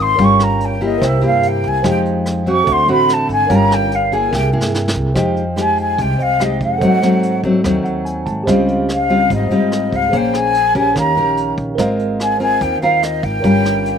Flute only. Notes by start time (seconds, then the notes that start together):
0.02 C6
0.24 C#6
0.43 A#5
0.65 G5
0.85 D#5
1.07 E5
1.26 F5
1.48 G5
1.68 G#5
1.90 G5
2.50 C#6
2.72 C6
2.91 B5
3.13 A5
3.32 G#5
3.55 A#5
3.74 G5
3.95 F5
4.15 G#5
4.37 G5
5.60 G#5
5.81 G#5
6.02 G5
6.22 F5
6.43 D#5
6.63 F#5
8.93 F5
9.34 D#5
9.96 F5
10.17 G5
10.37 G#5
10.78 G#5
10.98 A#5
12.22 G#5
12.42 G#5
12.62 G5
12.82 F5
13.03 D#5
13.24 G5